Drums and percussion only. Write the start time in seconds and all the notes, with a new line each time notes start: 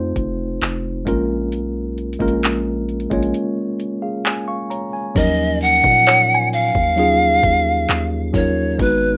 0.16 kick, closed hi-hat
0.62 clap, closed hi-hat
1.07 kick, closed hi-hat
1.52 closed hi-hat
1.98 closed hi-hat
2.13 closed hi-hat
2.20 kick
2.28 closed hi-hat
2.43 clap, closed hi-hat
2.89 closed hi-hat
3.00 closed hi-hat
3.11 kick, closed hi-hat
3.23 closed hi-hat
3.34 closed hi-hat
3.80 closed hi-hat
4.25 clap, closed hi-hat
4.71 closed hi-hat
5.16 kick, closed hi-hat, crash
5.61 closed hi-hat
5.84 kick
6.06 clap, closed hi-hat
6.53 closed hi-hat
6.75 kick
6.98 closed hi-hat
7.43 kick, closed hi-hat
7.89 clap, closed hi-hat
8.34 kick, closed hi-hat
8.79 kick, closed hi-hat